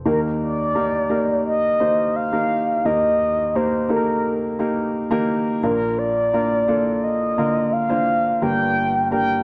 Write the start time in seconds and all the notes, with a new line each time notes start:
0.05 D#2 D#3 A#3 D#4 G4 A#4
0.41 D5
0.75 A#3 D#4 G4 A#4
1.09 A#3 D#4 G4 A#4
1.46 D#5
1.80 A#3 D#4 G4 C5
2.16 F5
2.32 A#3 D#4 G4 A#4
2.85 D#2 D#3 A#3 D#4 G4 A#4 D#5
3.55 A#3 D#4 G4 A#4 C5
3.89 A#3 D#4 G4 A4 A#4
3.96 A#4
4.59 A#3 D#4 G4 A#4
5.11 A#3 D#4 G4 A#4
5.63 A#1 A#2 A#3 D4 F4 A#4
5.98 D5
6.33 A#3 D4 F4 A#4
6.68 A#3 D4 F4 A4
7.04 D#5
7.38 D3 A#3 F4 A#4
7.73 F5
7.89 A#3 D4 F4 C5
8.42 G1 G2 A#3 D4 G4 A#4 G5
9.11 A#3 D4 G4 A#4 G5